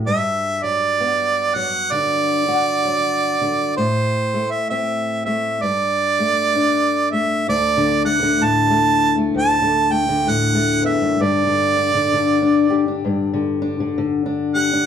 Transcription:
0.00 0.62 F#3 soft
0.06 3.73 G2 medium
0.06 0.65 E5 medium
0.63 1.55 F#3 soft
0.63 1.56 D5 medium
1.00 3.74 B3 medium
1.55 2.84 F#3 medium
1.55 1.93 F#5 loud
1.92 3.40 D3 medium
1.92 3.76 D5 loud
2.48 3.73 F#4 medium
2.85 3.78 F#3 medium
3.41 3.78 D3 medium
3.77 5.63 A2 medium
3.77 4.53 C5 medium
4.34 5.25 A3 medium
4.51 4.70 E5 medium
4.70 5.59 C4 medium
4.70 5.22 E5 medium
5.25 5.59 A3 medium
5.25 5.63 E5 medium
5.62 7.44 G2 medium
5.62 7.11 D5 loud
6.19 7.12 A3 medium
6.56 7.44 D4 medium
7.11 7.45 A3 soft
7.11 7.46 E5 medium
7.48 9.33 D2 medium
7.48 8.01 D5 medium
7.77 8.22 D3 medium
8.05 8.69 A3 medium
8.05 8.45 F#5 medium
8.23 9.61 D3 medium
8.41 9.62 A2 medium
8.41 9.21 A5 loud
8.70 9.16 A3 medium
9.17 9.90 A3 medium
9.34 10.82 D2 medium
9.34 9.94 A5 loud
9.62 10.08 D3 medium
9.91 10.54 A3 medium
9.91 10.31 G5 loud
10.09 11.46 D3 medium
10.27 11.20 A2 medium
10.27 10.84 F#5 loud
10.55 11.20 A3 medium
10.82 11.01 E2 medium
10.82 11.23 E5 medium
11.02 11.19 F#2 medium
11.20 13.04 G2 medium
11.20 13.06 D5 medium
11.47 11.93 D3 medium
11.76 12.41 D4 medium
11.94 12.12 D3 medium
12.13 13.32 D3 medium
12.42 12.87 D4 medium
12.70 14.55 G4 medium
12.88 13.61 D4 medium
13.05 14.86 G2 medium
13.34 13.79 D3 medium
13.62 14.25 D4 medium
13.80 13.97 D3 medium
13.98 14.86 D3 medium
14.26 14.72 D4 medium
14.55 14.86 G4 medium
14.55 14.86 F#5 loud
14.73 14.86 D4 medium

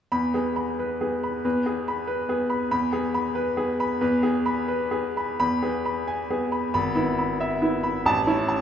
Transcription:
0.12 1.40 E2 medium
0.12 0.48 B5 medium
0.34 0.70 B3 soft
0.34 0.70 G#4 soft
0.56 0.92 B5 medium
0.79 1.15 B4 soft
1.01 1.36 B3 soft
1.01 1.36 G#4 soft
1.23 1.57 B5 soft
1.45 2.67 E2 medium
1.45 1.79 B4 medium
1.66 2.00 B3 soft
1.66 2.00 G#4 soft
1.88 2.21 B5 medium
2.07 2.41 B4 medium
2.29 2.62 B3 soft
2.29 2.63 G#4 soft
2.50 2.70 B5 medium
2.71 3.98 E2 medium
2.71 3.05 B5 medium
2.93 3.27 B3 medium
2.93 3.27 G#4 medium
3.14 3.50 B5 medium
3.35 3.71 B4 medium
3.57 3.93 B3 medium
3.57 3.93 G#4 medium
3.80 4.15 B5 medium
4.01 5.36 E2 medium
4.01 4.37 B4 medium
4.23 4.60 B3 soft
4.23 4.60 G#4 medium
4.46 4.83 B5 medium
4.68 5.07 B4 medium
4.91 5.30 B3 soft
4.91 5.30 G#4 medium
5.17 5.38 B5 medium
5.40 6.69 E2 medium
5.40 5.76 B5 medium
5.62 5.98 B3 soft
5.62 5.98 G#4 soft
5.86 6.21 B5 medium
6.07 6.43 G#5 medium
6.30 6.65 B3 soft
6.30 6.65 G#4 soft
6.52 6.73 B5 soft
6.74 8.01 G#1 medium
6.74 7.09 B5 medium
6.95 7.31 B3 soft
6.95 7.31 E4 medium
7.19 7.53 B5 medium
7.40 7.75 E5 medium
7.62 7.96 B3 soft
7.62 7.96 E4 soft
7.83 8.05 B5 medium
8.06 8.61 A1 medium
8.06 8.40 A5 medium
8.27 8.61 C#4 medium
8.27 8.61 E4 medium
8.48 8.61 A5 medium

